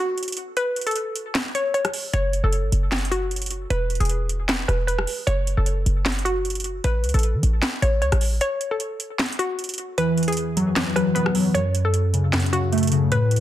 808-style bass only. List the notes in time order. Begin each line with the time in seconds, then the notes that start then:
2.13 F#1
2.43 F#1
2.63 G#1
2.72 F#1
3.70 E1
4.00 E1
4.68 E1
5.27 F#1
5.57 F#1
5.86 F#1
6.84 A1
7.04 C#2
7.14 A1
7.34 E3
7.43 A1
7.82 A1
8.02 C#2
8.12 A1